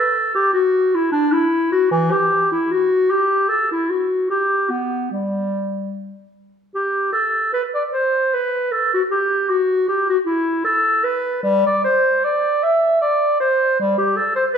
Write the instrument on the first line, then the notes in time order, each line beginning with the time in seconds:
clarinet
Already playing: A4
0.34 G4
0.53 F#4
0.94 E4
1.12 D4
1.32 E4
1.72 F#4
1.91 E3
2.11 G4
2.51 E4
2.71 F#4
3.10 G4
3.49 A4
3.71 E4
3.89 F#4
4.30 G4
4.69 B3
5.11 G3
6.74 G4
7.12 A4
7.53 B4
7.74 D5
7.93 C5
8.34 B4
8.72 A4
8.94 F#4
9.11 G4
9.49 F#4
9.88 G4
10.09 F#4
10.26 E4
10.64 A4
11.04 B4
11.43 G3
11.66 D5
11.84 C5
12.24 D5
12.63 E5
13.01 D5
13.40 C5
13.79 G3
13.98 G4
14.17 A4
14.36 C5
14.54 B4